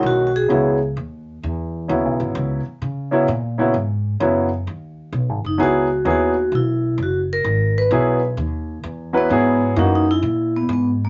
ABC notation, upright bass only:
X:1
M:4/4
L:1/8
Q:"Swing" 1/4=129
K:G#m
V:1 name="Upright bass" clef=bass
B,,,2 C,,2 D,,2 E,,2 | (3D,, B,,, G,,, C,, z C,2 A,,2 | G,,2 F,,2 D,,2 (3B,,, G,,, F,,, | C,,2 D,,2 B,,,2 F,,,2 |
G,,,2 B,,,2 D,,2 E,,2 | G,,2 F,,2 A,,2 G,,2 |]